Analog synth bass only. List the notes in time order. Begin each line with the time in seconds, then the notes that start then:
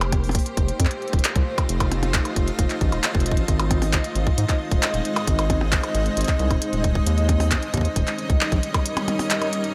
Already playing: F1
0.57 F1
0.80 F2
1.13 D#1
1.36 C2
1.69 F1
2.36 F1
2.59 F1
2.81 A1
2.92 D#1
3.15 F1
3.26 D#1
3.37 A1
3.48 G#1
4.15 G#1
4.38 G#2
4.71 D#1
4.94 D#1
5.27 G#1
5.95 G#1
6.17 G#1
6.39 C2
6.51 D#1
6.73 D#1
7.07 D#2
7.74 D#2
7.96 D#1
8.30 C#2
8.52 A#1